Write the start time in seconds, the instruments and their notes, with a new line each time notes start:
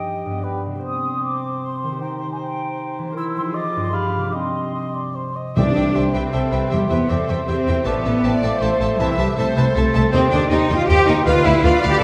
Already playing: harp G2 C4 D#4 C5, clarinet G4, cor anglais D#5, flute section G5
0.26 harp G2
0.30 harp B3
0.35 harp G4
0.40 harp D5
0.44 clarinet G4, cor anglais B4
0.66 harp C3
0.71 harp C4
0.75 harp G4
0.79 harp C5
0.84 clarinet C4, cor anglais C5, flute section D#6
1.23 flute section D6
1.62 flute section C6
1.83 harp D#3
1.88 harp C4
1.92 harp G4
1.97 harp C5
2.01 clarinet D#4, flute section G5
2.31 flute section G#5
2.40 flute section G5
2.99 harp E3
3.03 harp C4
3.08 harp G4
3.12 clarinet E4, harp A#4
3.16 cor anglais C5, flute section E6
3.36 harp F3, flute section C6
3.42 harp D#4
3.46 harp F4
3.51 harp G#4, cor anglais D#5, flute section D6
3.55 clarinet F4
3.77 harp G2
3.81 harp D4, flute section C6
3.86 harp F4
3.90 clarinet G4, harp G#4, cor anglais F5
3.94 flute section B5
4.15 harp C3, flute section D6
4.21 harp C4
4.26 harp D#4
4.30 harp G4, cor anglais D#5
4.35 clarinet C4, flute section C6
4.75 cor anglais D#5
4.95 cor anglais D5
5.15 cor anglais C5
5.36 cor anglais D#5
5.57 double bass section C2, timpani C3, harp C3, cello section D4, viola section G4, violin section C5 E5 G5, french horn section C5 E5, clarinet D5, cor anglais D5, flute section E5
5.76 double bass section C2, harp C4, violin section C5 E5 G5
5.95 double bass section C2, harp G4, violin section C5 E5 G5, cor anglais C5, flute section G5
6.14 double bass section C2, cello section C4, cor anglais B4, clarinet C5, violin section C5 E5 G5, harp C5
6.33 double bass section C2, harp G4, cor anglais A4, viola section A4, violin section C5 E5 G5, flute section G5
6.52 double bass section C2, harp C4, cor anglais B4, violin section C5 E5 G5
6.70 double bass section E2, harp E3, cello section G3, clarinet G4, viola section G4, violin section C5 E5 G5, cor anglais C5, flute section E5
6.90 double bass section E2, cello section B3, harp E4, clarinet B4, violin section C5 E5 G5
7.09 double bass section E2, cello section C4, viola section A4, violin section C5 E5 G5, harp C5, clarinet C5, cor anglais D5
7.28 double bass section E2, violin section C5 E5 G5, cor anglais C5, harp E5
7.47 double bass section E2, cello section C4, viola section G4, clarinet C5, harp C5, violin section C5 E5 G5, flute section E5
7.67 double bass section E2, harp E4, violin section C5 E5 G5
7.85 double bass section A1, harp A2, cello section B3, viola section A4, clarinet B4, violin section C5 E5 A5, french horn section C5 E5, cor anglais D5, flute section E5
8.05 double bass section A1, harp C4, violin section C5 E5 A5
8.23 double bass section A1, harp A4, violin section C5 E5 A5, viola section D5, flute section G5
8.42 double bass section A1, cello section A3, clarinet A4, harp C5, violin section C5 E5 A5, flute section F5
8.61 double bass section A1, harp A4, viola section C5, cor anglais C5, violin section C5 E5 A5
8.79 double bass section A1, harp C4, cor anglais C5, violin section C5 E5 A5
8.99 double bass section C2, harp C3, cello section E3, clarinet E4, cor anglais B4, violin section C5 E5 A5, viola section E5, flute section E5
9.18 double bass section C2, cello section G3, harp C4, clarinet G4, violin section C5 E5 A5
9.36 double bass section C2, cello section A3, clarinet A4, harp A4, cor anglais A4, viola section C5, violin section C5 E5 A5
9.56 double bass section C2, cor anglais B4, harp C5, violin section C5 E5 A5
9.74 double bass section C2, cello section A3, clarinet A4, harp A4, viola section A4, violin section C5 E5 A5, cor anglais C5, flute section E5
9.94 double bass section C2, harp C4, violin section C5 E5 A5
10.12 double bass section D#2, harp D#3, cello section C4, viola section G4, french horn section G4 C5, clarinet C5, cor anglais C5, violin section C5 D#5 G5, flute section G5
10.31 double bass section D#2, cello section D4, harp D#4, violin section C5 D#5 G5, clarinet D5
10.50 double bass section D#2, cello section D#4, cor anglais C5, harp C5, violin section C5 D#5 G5, clarinet D#5, flute section G5
10.70 double bass section D#2, violin section C5 D#5 G5, harp D#5
10.76 cello section F4, clarinet F5
10.88 double bass section D#2, cello section G4, cor anglais C5, violin section C5 D#5 G5, harp C5, clarinet G5, flute section G5
11.07 double bass section D#2, cello section D#4, harp D#4, violin section C5 D#5 G5, clarinet D#5
11.26 double bass section D2, harp D3, cello section F4, cor anglais B4, french horn section B4 F5, violin section B4 F5, viola section B4, clarinet F5, flute section F5
11.45 double bass section D2, harp B3, cello section E4, violin section B4 F5, clarinet E5
11.64 double bass section D2, cello section F4, cor anglais B4, violin section B4 F5, harp B4, viola section D5, clarinet F5, flute section F5
11.83 double bass section D2, harp F4, violin section B4 F5
11.89 cello section G4, clarinet G5